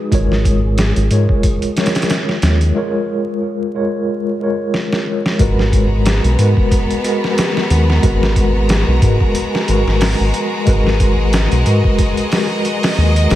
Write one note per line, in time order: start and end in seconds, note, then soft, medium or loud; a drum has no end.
0.00 0.11 G#3 medium
0.00 0.14 D#4 medium
0.00 0.14 F#4 medium
0.00 2.75 G#4 medium
0.00 0.13 B4 medium
0.11 0.93 G#1 loud
0.11 1.07 G#3 medium
0.11 1.07 F4 medium
0.11 1.08 A#4 medium
0.11 1.09 C#5 medium
0.11 kick loud
0.11 closed hi-hat medium
0.32 snare soft
0.45 kick medium
0.45 closed hi-hat medium
0.78 snare loud
0.78 closed hi-hat medium
0.96 1.09 G#1 loud
0.96 closed hi-hat soft
1.11 1.27 G#2 medium
1.11 1.73 G#3 medium
1.11 1.73 F4 medium
1.11 1.74 A#4 medium
1.11 1.74 C#5 medium
1.11 closed hi-hat medium
1.29 kick medium
1.43 kick loud
1.43 closed hi-hat medium
1.62 closed hi-hat soft
1.75 2.71 G#3 medium
1.75 2.72 F4 medium
1.75 2.73 A#4 medium
1.75 2.73 C#5 medium
1.75 snare medium
1.75 closed hi-hat medium
1.86 snare medium
1.86 closed hi-hat medium
1.95 snare medium
1.95 closed hi-hat medium
2.02 snare medium
2.02 closed hi-hat medium
2.10 snare loud
2.10 closed hi-hat medium
2.29 snare medium
2.42 2.72 D#2 loud
2.42 snare loud
2.42 closed hi-hat medium
2.61 closed hi-hat soft
2.74 3.70 G#3 medium
2.74 3.71 F4 medium
2.74 3.72 A#4 medium
2.74 3.72 C#5 medium
3.74 4.37 G#3 medium
3.74 4.37 F4 medium
3.74 4.37 A#4 medium
3.74 4.38 C#5 medium
4.40 5.35 G#3 medium
4.40 5.36 F4 medium
4.40 5.37 A#4 medium
4.40 5.37 C#5 medium
4.74 snare medium
4.93 snare medium
5.26 snare medium
5.39 6.20 G#1 loud
5.39 6.34 G#3 medium
5.39 13.35 G#3 medium
5.39 10.67 B3 medium
5.39 13.35 F#4 medium
5.39 6.35 F#4 medium
5.39 6.35 A#4 medium
5.39 6.36 B4 medium
5.39 13.35 A#5 medium
5.39 kick loud
5.39 closed hi-hat medium
5.59 snare soft
5.72 kick loud
5.72 closed hi-hat medium
6.05 snare loud
6.05 closed hi-hat medium
6.24 6.36 B1 loud
6.24 closed hi-hat soft
6.38 6.55 G#2 loud
6.38 7.01 G#3 medium
6.38 7.01 F#4 medium
6.38 7.01 A#4 medium
6.38 7.02 B4 medium
6.38 closed hi-hat medium
6.57 kick loud
6.71 kick loud
6.71 closed hi-hat medium
6.91 closed hi-hat soft
7.04 7.99 G#3 medium
7.04 8.00 F#4 medium
7.04 8.01 A#4 medium
7.04 8.01 B4 medium
7.04 closed hi-hat medium
7.24 snare soft
7.38 snare loud
7.38 closed hi-hat loud
7.57 snare medium
7.70 8.00 D#2 loud
7.70 closed hi-hat medium
7.90 snare soft
8.02 8.84 G#1 loud
8.02 8.98 G#3 medium
8.02 8.99 F#4 medium
8.02 8.99 A#4 medium
8.02 9.00 B4 loud
8.02 kick loud
8.02 closed hi-hat medium
8.23 snare medium
8.36 kick medium
8.36 closed hi-hat medium
8.69 snare loud
8.69 closed hi-hat medium
8.88 9.00 B1 loud
9.02 9.18 G#2 loud
9.02 9.64 G#3 medium
9.02 9.65 F#4 medium
9.02 9.65 A#4 medium
9.02 9.65 B4 medium
9.02 kick loud
9.02 closed hi-hat medium
9.21 kick loud
9.35 closed hi-hat medium
9.55 snare medium
9.66 9.84 G#1 medium
9.66 10.63 G#3 medium
9.66 10.63 F#4 medium
9.66 10.64 A#4 medium
9.66 10.64 B4 medium
9.66 closed hi-hat medium
9.87 10.15 G#1 medium
9.87 snare soft
10.01 snare loud
10.01 open hi-hat medium
10.20 10.32 G#1 loud
10.34 closed hi-hat medium
10.65 11.48 G#1 loud
10.65 11.61 G#3 medium
10.65 11.62 F#4 medium
10.65 11.63 A#4 medium
10.65 11.63 B4 loud
10.65 13.35 D#5 medium
10.65 kick loud
10.65 closed hi-hat medium
10.87 snare soft
11.00 kick medium
11.00 closed hi-hat medium
11.33 snare loud
11.33 closed hi-hat medium
11.52 11.64 B1 loud
11.52 closed hi-hat soft
11.66 11.82 G#2 loud
11.66 12.28 G#3 medium
11.66 12.28 F#4 medium
11.66 12.29 A#4 medium
11.66 12.29 B4 medium
11.66 closed hi-hat medium
11.84 kick loud
11.99 kick loud
11.99 closed hi-hat medium
12.17 closed hi-hat soft
12.31 13.27 G#3 medium
12.31 13.27 F#4 medium
12.31 13.28 A#4 medium
12.31 13.29 B4 medium
12.31 snare loud
12.31 open hi-hat medium
12.65 closed hi-hat medium
12.83 snare loud
12.83 open hi-hat medium
12.98 13.27 D#2 loud
13.16 closed hi-hat medium
13.29 13.35 G#1 loud
13.29 13.35 G#3 medium
13.29 13.35 F#4 medium
13.29 13.35 A#4 medium
13.29 snare loud
13.29 open hi-hat medium